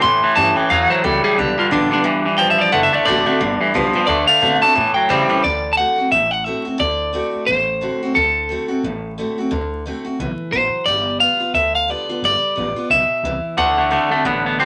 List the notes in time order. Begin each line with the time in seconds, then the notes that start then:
0.02 A2 E3 C6
0.23 A2 E3, muted upright bass stroke
0.35 G2 A2 E3 G3 C#4 E4 A5
0.56 A2 E3 C#4 E4 G5
0.70 E2 A2 E3 F#3 F5
0.90 A2 F#3 C5, muted upright bass stroke
1.04 C#2 A2 F#3 G3 A4
1.24 A2 G3 G#4, muted upright bass stroke
1.38 B1 G2 D3 G3 G4
1.58 G2 D3 F4, muted upright bass stroke
1.71 A1 G2 D3 G3 B3 D4 F4
1.91 G2 D3 B3 D4 F4, muted upright bass stroke
2.04 G1 G2 E3 F3
2.25 G2 E3, muted upright bass stroke
2.38 E1 G2 E3 F3 G5
2.50 E5
2.58 G2 F3 D5, muted upright bass stroke
2.72 F#1 D3 A3 F#5
2.83 E5
2.93 D3 A3 D5, muted upright bass stroke
3.05 A1 D3 A3 C4 F#4 D5
3.26 D3 A3 C4 F#4, muted upright bass stroke
3.40 G1 G2 D3 G3
3.61 G2 E3, muted upright bass stroke
3.74 B1 G2 F3 G3 B3 F4
3.93 G2 F3 B3 F4, muted upright bass stroke
4.07 D2 D3 A3 D5
4.27 D3 A3 F5
4.40 B2 D3 A3 C4 F#4
4.62 D3 A3 C4 F#4 A5, muted upright bass stroke
4.75 A2 E3
4.94 A2 F#3 G5, muted upright bass stroke
5.09 A2 C#3 E3 G3 C#4 E4 C5
5.29 A2 G3 C#4 E4, muted upright bass stroke
5.44 D2 D3 D5
5.73 A5
5.77 D3 A3 C4 F#4 F#5
5.98 C4 F#4, muted upright bass stroke
6.12 A1 A2 E5
6.31 F#5
6.44 D3 A3 C4 F#4 E5
6.65 C4 F#4, muted upright bass stroke
6.78 D2 D3 D5
7.13 D3 A3 C4 F#4
7.35 muted upright bass stroke
7.46 A1 A2 C5
7.81 D3 A3 C4 F#4
8.02 C4 F#4, muted upright bass stroke
8.15 D2 D3 A4
8.49 D3 A3 C4 F#4
8.68 C4 F#4, muted upright bass stroke
8.83 A1 A2
9.18 D3 A3 C4 F#4
9.38 C4 F#4, muted upright bass stroke
9.51 D2 D3
9.86 D3 A3 C4 F#4
10.05 C4 F#4, muted upright bass stroke
10.19 B1 E3
10.39 muted upright bass stroke
10.53 A1 F#3 C5
10.73 muted upright bass stroke
10.86 G1 G3 D5
11.20 G3 B3 F4 F5
11.40 B3 F4, muted upright bass stroke
11.54 D2 D3 E5
11.75 F5
11.88 G3 B3 F4 D5
12.08 B3 F4, muted upright bass stroke
12.22 G1 G3 D5
12.43 muted upright bass stroke
12.56 A1 G3 B3 F4
12.76 B3 F4, muted upright bass stroke
12.90 B1 B2 E5
13.09 muted upright bass stroke
13.23 C2 E3
13.44 muted upright bass stroke
13.57 D2 D3 A3 F#5
13.78 D3 A3
13.91 D3 A3 C4 F#4
14.11 D3 A3 C4 F#4, muted upright bass stroke
14.25 A1 A2 D3 B3
14.46 D3 B3
14.59 D3 A3 C4 F#4